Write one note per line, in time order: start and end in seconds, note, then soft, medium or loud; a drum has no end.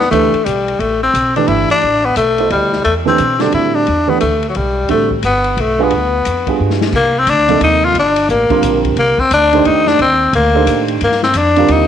0.00 0.10 B3 medium
0.00 snare soft
0.11 0.32 D2 medium
0.11 0.31 E3 soft
0.11 0.47 A3 medium
0.11 0.31 A3 soft
0.11 0.31 D4 soft
0.11 0.32 G4 soft
0.11 0.32 B4 medium
0.11 hi-hat pedal soft
0.11 ride medium
0.34 muted upright bass stroke soft
0.34 ride soft
0.45 0.79 B1 medium
0.45 0.82 G3 medium
0.45 hi-hat pedal soft
0.45 ride medium
0.68 ride soft
0.79 1.13 A1 medium
0.79 1.02 A3 medium
0.79 ride soft
1.03 1.34 C4 medium
1.14 1.47 B1 medium
1.14 hi-hat pedal soft
1.14 ride medium
1.36 1.80 E3 soft
1.36 1.80 A3 soft
1.36 1.49 D4 medium
1.36 1.81 D4 soft
1.36 1.81 G4 soft
1.36 1.81 B4 medium
1.36 ride soft
1.48 1.68 G1 medium
1.48 1.70 E4 medium
1.48 ride soft
1.70 2.07 D4 medium
1.70 muted upright bass stroke soft
1.70 ride soft
1.81 2.16 A1 medium
1.81 ride soft
2.05 2.17 B3 medium
2.16 2.50 B1 medium
2.16 2.49 A3 medium
2.16 hi-hat pedal medium
2.16 ride medium
2.38 2.83 B2 soft
2.38 2.83 E4 soft
2.38 2.82 F#4 soft
2.38 2.83 A4 soft
2.38 2.83 C5 medium
2.38 ride soft
2.50 2.84 D2 medium
2.50 2.83 G3 medium
2.50 ride soft
2.73 snare soft
2.84 3.18 E2 medium
2.84 2.94 A3 medium
2.84 ride soft
3.05 3.17 E3 medium
3.05 3.17 A3 soft
3.05 3.43 C4 medium
3.05 3.17 D4 medium
3.05 3.18 G4 medium
3.05 3.18 B4 medium
3.05 snare soft
3.18 3.52 B2 medium
3.18 hi-hat pedal soft
3.18 ride soft
3.39 3.84 D3 soft
3.39 3.84 G3 soft
3.39 3.85 C4 soft
3.39 3.53 D4 medium
3.39 3.85 F#4 soft
3.39 3.85 A4 medium
3.39 snare soft
3.39 ride soft
3.52 3.86 A2 medium
3.52 3.76 E4 medium
3.52 ride soft
3.75 4.11 D4 medium
3.87 4.21 E2 medium
3.87 ride soft
4.07 4.19 E3 soft
4.07 4.19 A3 soft
4.07 4.20 B3 medium
4.07 4.20 D4 soft
4.07 4.20 G4 soft
4.07 4.20 B4 medium
4.20 4.55 D2 medium
4.20 4.48 A3 medium
4.20 hi-hat pedal soft
4.20 ride medium
4.43 ride soft
4.49 4.58 F#3 soft
4.55 4.89 B1 medium
4.55 4.90 G3 medium
4.55 ride soft
4.89 5.23 A1 medium
4.89 5.09 D3 soft
4.89 5.09 G3 soft
4.89 5.10 A3 medium
4.89 5.09 C4 soft
4.89 5.09 F#4 soft
4.89 5.09 A4 medium
4.89 ride soft
5.11 kick soft
5.23 5.57 G1 medium
5.23 5.62 B3 medium
5.23 hi-hat pedal soft
5.23 ride medium
5.44 ride soft
5.57 5.90 B1 medium
5.57 5.85 A3 medium
5.57 ride medium
5.79 5.90 G3 medium
5.79 5.91 B3 medium
5.79 5.90 D4 medium
5.79 5.91 F4 medium
5.79 5.91 G#4 medium
5.83 6.62 B3 medium
5.90 6.25 D2 medium
5.90 ride soft
6.25 6.59 F2 medium
6.25 hi-hat pedal soft
6.25 ride medium
6.47 6.91 G3 soft
6.47 6.91 B3 soft
6.47 6.91 D4 soft
6.47 6.91 F4 soft
6.47 6.92 G#4 soft
6.47 kick soft
6.47 ride soft
6.60 6.92 G2 medium
6.70 snare soft
6.81 snare medium
6.92 7.26 C2 medium
6.92 7.21 A#3 medium
6.92 kick medium
6.92 crash medium
7.19 7.31 C4 medium
7.27 7.60 D2 medium
7.27 7.63 D4 medium
7.27 hi-hat pedal soft
7.27 ride medium
7.48 7.92 C3 medium
7.48 7.93 F3 soft
7.48 7.93 A#3 medium
7.48 7.93 D#4 soft
7.48 7.93 A4 medium
7.48 ride soft
7.61 7.94 D#2 medium
7.61 7.87 D#4 medium
7.61 ride medium
7.85 7.97 F4 medium
7.94 8.28 G1 medium
7.94 ride medium
7.99 8.29 D4 medium
8.16 ride medium
8.28 8.49 A1 medium
8.28 8.82 A#3 medium
8.28 hi-hat pedal soft
8.50 8.94 D3 medium
8.50 8.95 G3 medium
8.50 8.95 C4 medium
8.50 8.95 F4 medium
8.50 8.95 A#4 medium
8.50 muted upright bass stroke soft
8.50 kick medium
8.50 ride soft
8.62 8.96 A#1 medium
8.62 hi-hat pedal medium
8.62 ride medium
8.84 kick soft
8.84 ride soft
8.96 9.17 C2 medium
8.96 9.22 A#3 medium
8.96 ride soft
9.18 9.32 C4 medium
9.18 muted upright bass stroke soft
9.18 kick soft
9.31 9.64 D2 medium
9.31 9.68 D4 loud
9.31 hi-hat pedal soft
9.31 ride medium
9.53 9.97 D#3 medium
9.53 9.97 A3 medium
9.53 9.97 D4 medium
9.53 9.97 G4 medium
9.53 9.98 C5 medium
9.53 ride soft
9.65 9.98 F2 medium
9.65 9.89 D#4 medium
9.65 ride medium
9.87 10.00 D4 medium
9.87 snare soft
9.99 10.32 D#2 medium
9.99 10.32 C4 medium
9.99 ride medium
10.33 10.66 D2 medium
10.33 10.86 A#3 medium
10.33 ride medium
10.54 10.98 D#3 soft
10.54 10.99 D4 soft
10.54 10.99 G4 medium
10.54 10.98 A4 medium
10.54 10.99 C5 medium
10.66 11.00 A2 medium
10.66 hi-hat pedal medium
10.66 ride medium
10.88 ride soft
11.01 11.34 G2 medium
11.01 11.23 A#3 medium
11.01 ride medium
11.11 snare soft
11.23 11.39 C4 medium
11.23 snare soft
11.34 11.68 F2 medium
11.34 11.74 D4 medium
11.34 hi-hat pedal soft
11.34 ride medium
11.56 11.87 D3 medium
11.56 11.87 G3 medium
11.56 11.87 C4 medium
11.56 11.87 F4 medium
11.56 11.87 A#4 medium
11.56 ride soft
11.68 11.87 D#2 medium
11.68 11.87 D#4 medium
11.68 ride medium